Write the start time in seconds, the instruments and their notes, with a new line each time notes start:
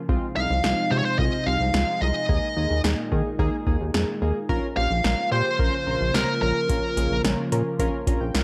Already playing: analog synth pad F3
0.09 analog synth bass C2, analog synth pad C3 G#3 D#4, synth keys G#3 C4 F4, kick
0.36 analog synth bass C2, synth keys G#3 C4 D#4, lead electric guitar F5
0.50 analog synth bass C2
0.64 analog synth bass C2, synth keys G#3 C4 F4, snare
0.91 analog synth bass C3, synth keys G#3 C4 F4, lead electric guitar C5
0.98 lead electric guitar C#5
1.05 lead electric guitar C5
1.19 analog synth bass C2, synth keys G#3 C4 F4, lead electric guitar D#5, kick
1.46 analog synth bass C2, synth keys G#3 C4 F4, lead electric guitar F5
1.60 analog synth bass C2
1.74 analog synth bass C#2, synth keys G#3 C4 F4, snare
2.01 analog synth bass C2, synth keys G#3 C4 F4, lead electric guitar D#5
2.29 analog synth bass D#2, analog synth pad A#2 D#3, synth keys A#3 D#4 G#4, kick
2.57 analog synth bass D#2, synth keys A#3 D#4 G#4
2.70 analog synth bass D#2
2.84 analog synth bass D#2, synth keys A#3 D#4 G#4, snare
3.12 analog synth bass D#3, synth keys A#3 D#4 G#4, kick
3.39 analog synth bass D#2, synth keys A#3 D#4 G#4, kick
3.67 analog synth bass D#2, synth keys A#3 D#4 G#4, kick
3.81 analog synth bass D#2
3.94 analog synth bass F2, synth keys A#3 D#4 G#4, snare
4.22 analog synth bass D#2, synth keys A#3 D#4 G#4
4.49 analog synth bass A#1, analog synth pad C#3 F3 A#3 F4, synth keys C#4 F4 A#4, kick
4.77 analog synth bass A#1, synth keys C#4 F4 G4, lead electric guitar F5
4.91 analog synth bass A#1
5.04 analog synth bass A#1, synth keys C#4 F4 A#4, snare
5.32 analog synth bass A#2, synth keys C#4 F4 G4, lead electric guitar C5
5.59 analog synth bass A#1, synth keys C#4 F4 A#4, kick
5.87 analog synth bass A#1, synth keys C#4 F4 A#4
6.01 analog synth bass A#1
6.14 analog synth bass C2, synth keys C#4 F4 C5, lead electric guitar A#4, snare
6.42 analog synth bass A#1, synth keys C#4 F4 A#4, lead electric guitar A#4
6.69 analog synth bass A#1, synth keys C#4 F4 A#4, kick, closed hi-hat
6.97 analog synth bass A#1, synth keys C#4 F4 G#4, closed hi-hat
7.11 analog synth bass A#1
7.25 analog synth bass A#1, synth keys C#4 F4 A#4, snare, closed hi-hat
7.52 analog synth bass A#2, synth keys C#4 F4 A#4, closed hi-hat
7.79 analog synth bass A#1, synth keys C#4 F4 A#4, kick, closed hi-hat
8.07 analog synth bass A#1, synth keys C#4 F4 A#4 A#5, kick, closed hi-hat
8.21 analog synth bass A#1, synth keys G5
8.35 analog synth bass C2, synth keys C#4 F4 A#4 F5, snare, closed hi-hat